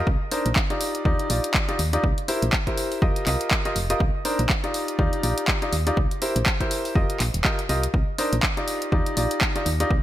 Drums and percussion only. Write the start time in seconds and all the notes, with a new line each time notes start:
0.07 kick
0.31 open hi-hat
0.46 closed hi-hat
0.56 kick, clap
0.70 closed hi-hat
0.81 open hi-hat
0.95 closed hi-hat
1.05 kick
1.19 closed hi-hat
1.30 open hi-hat
1.44 closed hi-hat
1.54 kick, clap
1.69 closed hi-hat
1.79 open hi-hat
1.93 closed hi-hat
2.04 kick
2.18 closed hi-hat
2.28 open hi-hat
2.42 closed hi-hat
2.53 kick, clap
2.67 kick, closed hi-hat
2.77 open hi-hat
2.92 open hi-hat
3.02 kick
3.16 closed hi-hat
3.27 clap, open hi-hat
3.41 closed hi-hat
3.51 kick, clap
3.65 closed hi-hat
3.76 open hi-hat
3.90 closed hi-hat
4.00 kick
4.25 open hi-hat
4.39 closed hi-hat
4.50 kick, clap
4.64 closed hi-hat
4.74 open hi-hat
4.88 closed hi-hat
4.99 kick
5.13 closed hi-hat
5.23 open hi-hat
5.38 closed hi-hat
5.48 kick, clap
5.62 closed hi-hat
5.73 open hi-hat
5.87 closed hi-hat
5.97 kick
6.11 closed hi-hat
6.22 open hi-hat
6.36 closed hi-hat
6.46 kick, clap
6.60 kick, closed hi-hat
6.71 open hi-hat
6.85 open hi-hat
6.95 kick
7.10 closed hi-hat
7.20 clap, open hi-hat
7.34 closed hi-hat
7.45 kick, clap
7.59 closed hi-hat
7.69 open hi-hat
7.83 closed hi-hat
7.94 kick
8.18 open hi-hat
8.33 closed hi-hat
8.43 kick, clap
8.57 closed hi-hat
8.68 open hi-hat
8.82 closed hi-hat
8.92 kick
9.06 closed hi-hat
9.17 open hi-hat
9.31 closed hi-hat
9.41 kick, clap
9.56 closed hi-hat
9.66 open hi-hat
9.80 closed hi-hat
9.91 kick